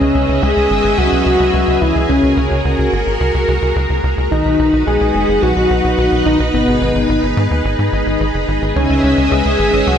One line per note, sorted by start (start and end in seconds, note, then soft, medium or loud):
0.00 0.12 C#2 medium
0.00 0.44 C#4 loud
0.00 2.07 C#4 medium
0.00 4.27 G#4 medium
0.00 2.07 B4 medium
0.00 2.07 D#5 medium
0.00 2.07 E5 medium
0.15 0.26 C#2 medium
0.29 0.40 C#2 medium
0.42 0.54 C#2 loud
0.42 0.99 G#4 loud
0.57 0.68 C#2 medium
0.70 0.81 G#1 medium
0.84 0.95 G#1 medium
0.98 1.09 C#2 loud
0.98 1.83 F#4 loud
1.12 1.23 C#2 medium
1.26 1.37 C#2 medium
1.40 1.51 C#2 medium
1.54 1.65 C#2 loud
1.68 1.79 C#2 medium
1.81 1.93 C#2 medium
1.81 2.08 E4 medium
1.95 2.07 C#2 medium
2.09 2.20 C#2 loud
2.09 2.88 C#4 medium
2.09 4.29 F#4 medium
2.09 4.29 A#4 medium
2.23 2.34 C#2 medium
2.37 2.48 C#2 medium
2.51 2.62 C#2 medium
2.65 2.76 C#2 loud
2.79 2.90 C#2 medium
2.93 3.04 G#1 medium
3.07 3.18 G#1 medium
3.20 3.31 C#2 loud
3.34 3.45 C#2 medium
3.48 3.59 C#2 medium
3.62 3.73 C#2 medium
3.76 3.87 C#2 loud
3.90 4.01 C#2 medium
4.04 4.15 C#2 medium
4.18 4.29 C#2 medium
4.31 4.43 B1 loud
4.31 8.72 D#4 medium
4.31 4.83 D#4 loud
4.31 6.51 F#4 medium
4.31 8.72 B4 medium
4.45 4.56 B1 medium
4.59 4.70 B1 medium
4.73 4.84 B1 medium
4.87 4.98 B1 loud
4.87 5.44 G#4 loud
5.01 5.12 B1 medium
5.15 5.26 F#1 medium
5.29 5.40 F#1 medium
5.42 5.54 B1 loud
5.42 6.25 F#4 loud
5.56 5.68 B1 medium
5.70 5.81 B1 loud
5.84 5.95 B1 medium
5.98 6.09 B1 loud
6.12 6.23 B1 medium
6.26 6.37 B1 loud
6.26 6.38 D#4 medium
6.40 6.51 B1 medium
6.54 6.65 G#1 loud
6.54 7.33 B3 medium
6.54 9.98 G#4 medium
6.68 6.79 G#1 medium
6.81 6.93 G#1 medium
6.95 7.06 G#1 medium
7.09 7.20 G#1 loud
7.23 7.34 G#1 medium
7.37 7.48 G#2 medium
7.51 7.62 D#2 medium
7.65 7.76 G#1 loud
7.79 7.90 G#2 medium
7.93 8.04 G#1 loud
8.06 8.18 G#1 medium
8.20 8.31 G#1 loud
8.34 8.45 F#1 medium
8.48 8.59 G#1 medium
8.62 8.73 G#1 medium
8.76 8.87 C#2 loud
8.76 9.33 C#4 loud
8.76 9.98 C#4 medium
8.76 9.98 B4 medium
8.76 9.98 D#5 medium
8.76 9.98 E5 medium
8.90 9.01 C#2 medium
9.04 9.15 C#2 medium
9.18 9.29 C#2 medium
9.31 9.43 C#2 loud
9.31 9.88 G#4 loud
9.45 9.56 C#2 medium
9.59 9.70 G#1 medium
9.73 9.84 G#1 medium
9.87 9.98 C#2 loud
9.87 9.98 F#4 loud